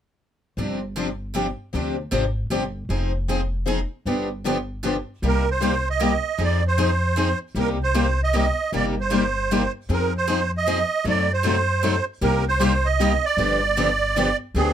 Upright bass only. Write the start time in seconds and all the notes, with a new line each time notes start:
0.57 G1
1.74 D2
2.12 G#1
2.50 G1
2.89 F1
4.05 G1
5.22 C2
6.39 F2
7.55 C2
8.72 G1
9.89 F2
11.05 F#2
12.21 C2
13.37 G1
14.54 D2